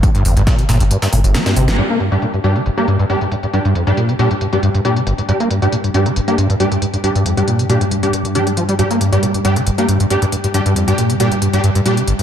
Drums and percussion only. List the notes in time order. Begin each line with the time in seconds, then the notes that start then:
0.03 kick, closed hi-hat, tambourine
0.15 closed hi-hat
0.25 open hi-hat, tambourine
0.37 closed hi-hat
0.47 kick, snare, closed hi-hat, tambourine
0.59 closed hi-hat
0.69 snare, open hi-hat, tambourine
0.80 closed hi-hat
0.91 closed hi-hat, tambourine
1.02 snare, open hi-hat, tambourine
1.13 closed hi-hat, open hi-hat
1.24 closed hi-hat, tambourine
1.34 snare, closed hi-hat, tambourine
1.46 snare, closed hi-hat
1.56 open hi-hat, tambourine
1.68 snare, closed hi-hat
1.78 closed hi-hat
1.90 snare, closed hi-hat
2.00 closed hi-hat
2.12 closed hi-hat
2.22 closed hi-hat
2.34 closed hi-hat
2.44 closed hi-hat
2.56 snare, closed hi-hat
2.66 closed hi-hat
2.78 closed hi-hat
2.88 closed hi-hat
2.99 closed hi-hat
3.10 closed hi-hat
3.21 snare, closed hi-hat
3.32 closed hi-hat
3.43 closed hi-hat
3.54 closed hi-hat
3.65 closed hi-hat
3.75 closed hi-hat
3.87 closed hi-hat
3.97 closed hi-hat
4.09 closed hi-hat
4.19 closed hi-hat
4.31 closed hi-hat
4.41 closed hi-hat
4.53 closed hi-hat
4.63 closed hi-hat
4.75 closed hi-hat
4.85 closed hi-hat
4.96 closed hi-hat
5.07 closed hi-hat, tambourine
5.18 closed hi-hat
5.29 closed hi-hat
5.40 snare, closed hi-hat
5.51 closed hi-hat
5.62 closed hi-hat
5.72 closed hi-hat
5.84 closed hi-hat
5.94 closed hi-hat
6.06 snare, closed hi-hat
6.16 closed hi-hat, tambourine
6.28 closed hi-hat
6.38 closed hi-hat, tambourine
6.50 closed hi-hat
6.60 closed hi-hat
6.72 snare, closed hi-hat
6.82 closed hi-hat, tambourine
6.94 closed hi-hat
7.04 closed hi-hat
7.16 closed hi-hat
7.26 closed hi-hat, tambourine
7.37 closed hi-hat
7.48 closed hi-hat, tambourine
7.59 closed hi-hat
7.70 closed hi-hat
7.81 closed hi-hat
7.91 closed hi-hat, tambourine
8.03 closed hi-hat
8.13 closed hi-hat
8.25 closed hi-hat
8.35 closed hi-hat
8.47 closed hi-hat
8.57 closed hi-hat, tambourine
8.69 closed hi-hat
8.79 closed hi-hat
8.91 snare, closed hi-hat
9.01 closed hi-hat, tambourine
9.13 closed hi-hat
9.23 closed hi-hat, tambourine
9.34 closed hi-hat
9.45 closed hi-hat
9.56 snare, closed hi-hat
9.67 closed hi-hat, tambourine
9.78 closed hi-hat
9.89 closed hi-hat, tambourine
10.00 closed hi-hat
10.10 closed hi-hat
10.22 snare, closed hi-hat
10.32 closed hi-hat, tambourine
10.44 closed hi-hat
10.54 closed hi-hat, tambourine
10.66 closed hi-hat
10.76 closed hi-hat, tambourine
10.88 closed hi-hat
10.98 closed hi-hat, tambourine
11.10 closed hi-hat
11.20 closed hi-hat
11.32 closed hi-hat
11.42 closed hi-hat, tambourine
11.53 closed hi-hat
11.64 closed hi-hat, tambourine
11.75 closed hi-hat
11.86 closed hi-hat, tambourine
11.97 closed hi-hat
12.07 closed hi-hat, tambourine
12.19 closed hi-hat